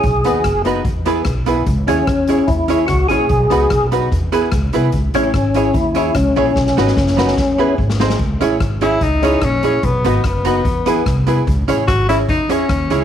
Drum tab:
HH |x-x-x-x-x-x-x-x-|x-x-x-x-x-x-x-x-|x-x-x-x-x-x-x-x-|x-x-x-x-x-x-x-o-|
SD |----r-------r---|----r-------r---|----r-------r---|----r-------r---|
BD |o---o---o---o---|o---o---o---o---|o---o---o---o---|o---o---o---o---|

HH |----------------|x-x-x-x-x-x-x-x-|x-x-x-x-x-x-x-x-|x-x-x-x-x-x-x-x-|
SD |ooooooooo----ooo|----r-------r---|----r-------r---|----r-------r---|
BD |o---o---o---o---|o---o---o---o---|o---o---o---o---|o---o---o---o---|